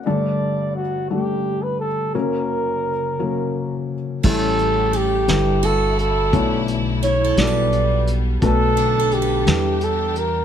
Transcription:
<<
  \new Staff \with { instrumentName = "Flugelhorn" } { \time 6/8 \key b \minor \tempo 4. = 57 d''4 fis'8 g'8. b'16 a'8 | ais'2~ ais'8 r8 | a'4 g'4 a'8 a'8~ | a'8 r8 cis''8 d''4 r8 |
a'4 g'4 a'8 ais'8 | }
  \new Staff \with { instrumentName = "Steel-string acoustic guitar" } { \time 6/8 \key b \minor r2. | r2. | a'4 a'4 fis'4~ | fis'8 r8 e'16 a'16 b'4 r8 |
r8 d'16 a'16 b'4. r8 | }
  \new Staff \with { instrumentName = "Felt piano" } { \time 6/8 \key b \minor <g a d' a'>4 r8 <g a d' a'>4 r8 | <fis ais cis' ais'>4 r8 <fis ais cis' ais'>4 r8 | <g cis' e' a'>4 r8 <g d' e' b'>4 r8 | <a d' e' cis''>4 r8 <g d' fis' b'>4 r8 |
<a d' fis' b'>4 r8 <g d' e' b'>4 r8 | }
  \new Staff \with { instrumentName = "Felt piano" } { \clef bass \time 6/8 \key b \minor <g,, g,>2. | <fis,, fis,>2. | <a,, a,>4. <g,, g,>4. | <b,, b,>4. <b,, b,>4. |
<b,, b,>4. <e, e>4. | }
  \new Staff \with { instrumentName = "String section" } { \time 6/8 \key b \minor << { r2. | r2. | g'4. e'4.~ | e'4. g4. |
a'4. g'4. | } \\ { r2. | r2. | <cis a>4. <d g>4. | <d a>4. b4. |
<d b>4. <e d'>4. | } >> }
  \new Staff \with { instrumentName = "Upright bass" } { \clef bass \time 6/8 \key b \minor r2. | r2. | a,,4. g,,4. | b,,4. b,,4. |
b,,4. e,4. | }
  \new DrumStaff \with { instrumentName = "Drums" } \drummode { \time 6/8 r4. r4. | r4. r4. | <cymc bd>8 hh8 hh8 <hh sn>8 hh8 hh8 | <hh bd>8 hh8 hh8 <hh sn>8 hh8 hh8 |
<hh bd>8 hh8 hh8 <hh sn>8 hh8 hh8 | }
>>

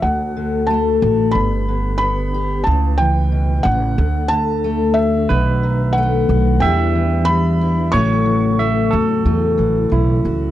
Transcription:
<<
  \new Staff \with { instrumentName = "Felt piano" } { \time 4/4 \key d \major \tempo 4 = 91 fis''4 a''4 b''4 b''4 | a''8 g''4 fis''4 a''4 e''8~ | e''4 fis''4 g''4 b''4 | cis'''2. r4 | }
  \new Staff \with { instrumentName = "Tine electric piano" } { \time 4/4 \key d \major r1 | r1 | b'2 e''2 | cis''4 e''8 a'4. e'4 | }
  \new Staff \with { instrumentName = "Tonewheel organ" } { \time 4/4 \key d \major << { a'2 b'2~ | b'2 a'2 | b'1 | a'1 | } \\ { fis'2 g'2 | e'2 d'2~ | d'1 | e'1 | } >> }
  \new Staff \with { instrumentName = "Tonewheel organ" } { \clef bass \time 4/4 \key d \major << { a2 b2 | a1~ | a2 g2 | fis1 | } \\ { d1 | cis2 d2 | dis2 e2 | cis1 | } >> }
  \new Staff \with { instrumentName = "Steel-string acoustic guitar" } { \clef bass \time 4/4 \key d \major << { r4 a8 fis'8 r4 b8 g'8 | r2. a8 fis'8 | r4 a8 fis'8 <e g b e'>4 g8 e'8 | <e a cis' fis'>4 a8 fis'8 a4 cis'8 fis'8 | } \\ { d,8 d4. g,8 d4. | cis8 e8 b,8 cis8 d,8 d4. | b,8 dis4. e,8 e4. | a,8 e2 e4. | } >> }
  \new Staff \with { instrumentName = "Upright bass" } { \clef bass \time 4/4 \key d \major d,4. a,,8 g,,2 | cis,4. a,,8 d,2 | b,,4. b,,8 e,2 | a,,4. e,8 e,8 a,,8 b,,8 cis,8 | }
>>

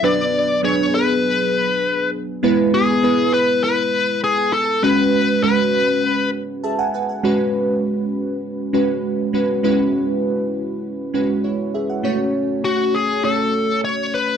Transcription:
<<
  \new Staff \with { instrumentName = "Lead electric guitar" } { \time 4/4 \key cis \phrygian \tempo 4 = 100 d''4 cis''8 b'2 r8 | r8 gis'4 b'8 b'4 gis'8 a'8 | b'4 b'4. r4. | r1 |
r1 | r4 fis'8 gis'8 a'4 cis''8 b'8 | }
  \new Staff \with { instrumentName = "Synth keys" } { \time 4/4 \key cis \phrygian << { r1 | r1 | r2. <gis' e'' a''>16 <fis'' gis''>16 <b' fis'' gis''>16 fis''16~ | fis''16 r2. r8. |
r2. <e' cis''>8 <gis' e''>16 fis''16~ | fis''16 r2. r8. | } \\ { <fis b d' b'>8 r8 <fis b d' gis'>4. r4. | <gis b e' b'>8 r8 <gis b e' b'>4. r4. | <gis cis' fis' b'>8 r8 <gis cis' fis' b'>4. r4. | <gis cis' fis' b'>4. r4 <gis cis' fis' b'>8 r8 <gis cis' fis' b'>8 |
<gis cis' e' fis' b'>4. r4 <gis cis' fis' b'>8 r4 | <a cis' fis' cis''>4. r8 <a cis' fis' cis''>4. r8 | } >> }
>>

